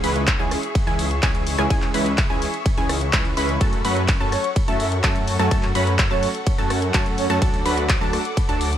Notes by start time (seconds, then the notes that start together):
Already playing: G#4 E5 C#6
0.04 C#2 E3 G#3 C#4 E4 B4 B5, open hi-hat
0.16 closed hi-hat
0.27 kick, clap, closed hi-hat, ride
0.39 C#2 E3 G#3 C#4 E4 G#4 G#5
0.51 cross-stick, open hi-hat
0.63 closed hi-hat
0.75 kick, closed hi-hat, ride
0.87 C#2 E3 G#3 C#4 E4 G#4 G#5, closed hi-hat
0.99 open hi-hat
1.11 closed hi-hat
1.23 C#2 E3 G#3 C#4 E4 G#4 G#5, kick, clap, closed hi-hat, ride
1.35 closed hi-hat
1.47 open hi-hat
1.58 C#2 E3 G#3 C#4 E4 G#4 G#5, cross-stick, closed hi-hat
1.70 C#2 E3 G#3 C#4 E4 G#4 G#5, kick, closed hi-hat, ride
1.82 clap, closed hi-hat
1.94 C#2 E3 G#3 C#4 E4 B4 B5, open hi-hat
2.06 closed hi-hat
2.18 kick, clap, closed hi-hat, ride
2.30 C#2 E3 G#3 C#4 E4 G#4 G#5
2.42 open hi-hat
2.54 closed hi-hat
2.66 kick, closed hi-hat, ride
2.78 C#2 E3 G#3 C#4 E4 G#4 G#5, closed hi-hat
2.89 cross-stick, open hi-hat
3.01 closed hi-hat
3.13 C#2 E3 G#3 C#4 E4 B4 B5, kick, clap, closed hi-hat, ride
3.25 closed hi-hat
3.37 C#2 E3 G#3 C#4 E4 B4 B5, open hi-hat
3.49 closed hi-hat
3.61 F#2 F#3 A3 C#4 F#4 A4 F#5 A5, kick, closed hi-hat, ride
3.73 closed hi-hat
3.85 F#2 F#3 A3 C#4 F#4 B4 B5, open hi-hat
3.97 closed hi-hat
4.08 kick, clap, closed hi-hat, ride
4.20 F#2 F#3 A3 C#4 F#4 A4 A5
4.32 C#5, cross-stick, open hi-hat
4.44 closed hi-hat
4.56 kick, closed hi-hat, ride
4.68 F#2 F#3 A3 C#4 F#4 A4 E5 A5, closed hi-hat
4.80 E5, open hi-hat
4.92 closed hi-hat
5.03 F#2 F#3 A3 C#4 F#4 A4 A5, kick, clap, closed hi-hat, ride
5.16 closed hi-hat
5.28 open hi-hat
5.39 F#2 F#3 A3 C#4 F#4 A4 A5, cross-stick, closed hi-hat
5.51 F#2 F#3 A3 C#4 F#4 A4 A5, kick, closed hi-hat, ride
5.63 clap, closed hi-hat
5.75 F#2 F#3 A3 C#4 F#4 B4 C#5 B5, open hi-hat
5.87 C#5, closed hi-hat
5.99 kick, clap, closed hi-hat, ride
6.11 F#2 F#3 A3 C#4 F#4 A4 C#5 A5
6.23 open hi-hat
6.35 closed hi-hat
6.47 kick, closed hi-hat, ride
6.58 F#2 F#3 A3 C#4 F#4 A4 A5, closed hi-hat
6.70 cross-stick, open hi-hat
6.82 closed hi-hat
6.94 F#2 F#3 A3 C#4 F#4 A4 A5, kick, clap, closed hi-hat, ride
7.06 closed hi-hat
7.18 C#5, open hi-hat
7.30 F#2 F#3 A3 C#4 F#4 A4 C#5 A5, closed hi-hat
7.42 D2 F#3 A3 D4 F#4 A4 A5 D6, kick, closed hi-hat, ride
7.54 closed hi-hat
7.66 D2 F#3 A3 D4 F#4 B4 B5, open hi-hat
7.78 closed hi-hat
7.89 kick, clap, closed hi-hat, ride
8.01 D2 F#3 A3 D4 F#4 A4 A5
8.13 cross-stick, open hi-hat
8.25 closed hi-hat
8.37 kick, closed hi-hat, ride
8.49 D2 F#3 A3 D4 F#4 A4 A5, closed hi-hat
8.61 open hi-hat
8.73 closed hi-hat